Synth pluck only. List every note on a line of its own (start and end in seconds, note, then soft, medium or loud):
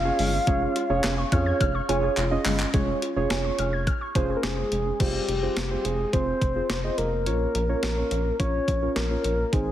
0.05 0.14 C#4 medium
0.19 0.28 G#3 medium
0.33 0.43 C#4 medium
0.47 0.57 G#3 loud
0.62 0.71 C#4 medium
0.76 0.85 F4 medium
0.90 0.99 G#4 medium
1.04 1.13 G#5 medium
1.18 1.28 C#6 medium
1.32 1.42 F6 medium
1.46 1.56 G#6 medium
1.61 1.70 F6 loud
1.75 1.84 C#6 medium
1.89 1.98 G#5 medium
2.03 2.13 G#4 medium
2.17 2.27 F4 medium
2.31 2.41 C#4 medium
2.45 2.55 G#3 medium
2.59 2.69 C#4 medium
2.74 2.83 G#3 loud
2.88 2.97 C#4 medium
3.02 3.12 F4 medium
3.16 3.26 G#4 medium
3.30 3.40 G#5 medium
3.45 3.54 C#6 medium
3.59 3.68 F6 medium
3.73 3.82 G#6 medium
3.87 3.97 F6 loud
4.01 4.11 C#6 medium
4.16 4.25 G#5 medium
4.30 4.39 G#4 medium
4.44 4.53 F4 medium
4.58 4.67 C#4 medium
4.72 4.81 G#3 medium
4.86 4.96 C#4 medium